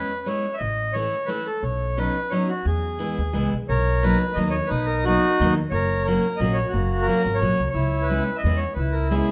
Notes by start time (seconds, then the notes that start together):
Already playing: G#3 B3 C#4 E4 B4
0.26 G#3 B3 C#4 E4 C#5
0.54 E5
0.58 A1 D#5
0.93 E3 A3 C#4 E4 C#5
1.26 E3 A3 C#4 E4 B4
1.47 A4
1.63 B1 C#5
1.97 F#3 B3 C#4 D#4 B4
2.30 F#3 B3 C#4 D#4 C#5
2.48 F#4
2.65 E2 G#4
2.99 E3 G#3 B3 E4
3.18 D#2
3.33 C#2 E3 G#3 B3 E4
3.54 B1
3.69 B1 A#4 C#5
4.03 F#3 A#3 B3 D#4 B4
4.34 D#2 F#3 A#3 D#4 D#5
4.38 B3
4.49 C#5 D#5
4.67 D#4 B4
4.71 B1
4.86 A#4
5.05 F#3 A#3 B3 D#4 F#4
5.40 D#2 F#3 A#3 B3 D#4
5.70 F#1 A#4 C#5
6.04 F#3 A#3 C#4 A#4
6.09 F#4
6.37 A#1 F#3 D#5
6.41 A#3 C#4 F#4
6.54 C#5
6.69 F#4
6.73 F#1 A#3
7.02 A#4
7.07 F#3 A#3 C#4 F#4
7.25 G#1
7.35 C#5
7.41 A#1 F#3 A#3 C#4 F#4
7.59 C#2
7.70 C#5
7.74 C#2 E4
8.02 B4
8.10 G#3 B3 C#4 E4
8.36 D#5 E5
8.44 E2 G#3 B3 C#4 E4
8.57 C#5
8.74 C#2 B4
8.79 E4
8.92 A#4
9.11 G#3 B3 C#4 E4 G#4
9.16 E4